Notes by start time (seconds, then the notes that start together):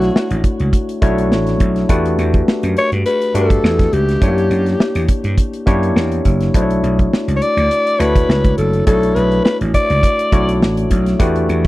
Already playing: A3 D4 E4 F#4 C#5
0.01 snare, closed hi-hat
0.16 snare
0.30 A1, closed hi-hat
0.44 kick, closed hi-hat
0.60 C#2, closed hi-hat
0.73 kick, closed hi-hat
0.89 closed hi-hat
1.02 B1 A3 D4 E4 F#4 C#5, kick, closed hi-hat
1.18 closed hi-hat
1.31 A1, snare
1.47 snare, closed hi-hat
1.60 B1, kick, closed hi-hat
1.76 snare, closed hi-hat
1.89 E2 A3 D4 F#4 G4 B4, kick, closed hi-hat
2.06 closed hi-hat
2.18 E2, closed hi-hat
2.34 kick, closed hi-hat
2.48 snare
2.63 F#2, closed hi-hat
2.77 C#5, closed hi-hat
2.92 G2, closed hi-hat
3.06 B4, closed hi-hat
3.22 closed hi-hat
3.34 G2 A3 D4 F#4 G4 A4 B4, closed hi-hat
3.50 kick, closed hi-hat
3.64 E2, snare
3.79 kick, snare, closed hi-hat
3.93 C#2 G4, closed hi-hat
4.09 snare, closed hi-hat
4.21 F#2 A3 D4 E4 G4 C#5, kick, closed hi-hat
4.28 A#3
4.38 closed hi-hat
4.50 F#2, closed hi-hat
4.66 snare, closed hi-hat
4.80 snare
4.95 E2, closed hi-hat
5.08 kick, closed hi-hat
5.24 G2, closed hi-hat
5.38 kick, closed hi-hat
5.53 closed hi-hat
5.66 F#2 A#3 D4 E4 G4 C#5, kick, closed hi-hat
5.83 closed hi-hat
5.96 E2, snare
6.12 closed hi-hat
6.25 F#1, kick, closed hi-hat
6.41 snare, closed hi-hat
6.54 B1 A3 D4 E4 F#4 C5, kick, closed hi-hat
6.62 C#5
6.71 closed hi-hat
6.83 B1, closed hi-hat
6.99 kick, closed hi-hat
7.13 snare
7.28 C#2, closed hi-hat
7.36 C#5
7.42 D5, closed hi-hat
7.57 D2, closed hi-hat
7.71 closed hi-hat
7.87 closed hi-hat
7.99 D2 A3 D4 E4 F#4 B4 C#5, closed hi-hat
8.15 kick, closed hi-hat
8.29 C#2, snare
8.44 kick, closed hi-hat
8.58 F#1 A4, closed hi-hat
8.73 closed hi-hat
8.86 B1 A3 D4 E4 F#4 A4 C#5, kick, closed hi-hat
9.03 closed hi-hat
9.15 B1 B4, closed hi-hat
9.32 closed hi-hat
9.45 B4, snare
9.61 A1, closed hi-hat
9.74 D5, kick, closed hi-hat
9.90 C#2, closed hi-hat
10.03 kick, closed hi-hat
10.19 closed hi-hat
10.32 B1 A3 D4 E4 F#4 C#5, kick, closed hi-hat
10.49 closed hi-hat
10.62 A1, snare
10.77 closed hi-hat
10.91 B1, kick, closed hi-hat
11.06 snare, closed hi-hat
11.19 E2 A3 D4 F#4 G4 B4, kick, closed hi-hat
11.36 closed hi-hat
11.49 E2, closed hi-hat